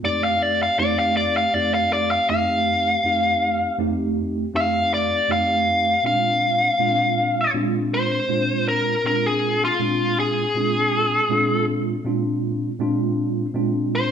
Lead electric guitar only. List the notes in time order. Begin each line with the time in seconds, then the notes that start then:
0.05 D5
0.24 F5
0.42 D5
0.63 F5
0.79 D5
0.99 F5
1.17 D5
1.37 F5
1.54 D5
1.74 F5
1.93 D5
2.11 F5
2.30 F5
4.56 F5
4.94 D5
5.32 F5
6.06 F5
7.94 C5
8.68 A#4
9.07 A#4
9.26 G#4
9.65 F4
10.20 G#4
13.95 C5